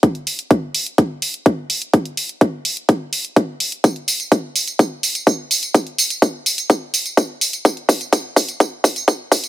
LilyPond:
\new DrumStaff \with { instrumentName = "Drums" } \drummode { \time 4/4 \tempo 4 = 126 <hh bd>16 hh16 hho16 hh16 <hh bd>8 hho16 hh16 <hh bd>8 hho16 hh16 <hh bd>8 hho16 hh16 | <hh bd>16 hh16 hho16 hh16 <hh bd>8 hho16 hh16 <hh bd>8 hho16 hh16 <hh bd>8 hho16 hh16 | <hh bd tamb>16 hh16 <hho tamb>16 <hh tamb>16 <hh bd tamb>8 <hho tamb>16 <hh tamb>16 <hh bd tamb>8 <hho tamb>16 <hh tamb>16 <hh bd tamb>8 <hho tamb>16 <hh tamb>16 | <hh bd tamb>16 hh16 <hho tamb>16 <hh tamb>16 <hh bd tamb>8 <hho tamb>16 <hh tamb>16 <hh bd tamb>8 <hho tamb>16 <hh tamb>16 <hh bd tamb>8 <hho tamb>16 <hh tamb>16 |
<hh bd tamb>16 hh16 <hho bd tamb>16 <hh tamb>16 <hh bd tamb>8 <hho bd tamb>16 <hh tamb>16 <hh bd tamb>8 <hho bd tamb>16 <hh tamb>16 <hh bd tamb>8 <hho bd tamb>16 <hh tamb>16 | }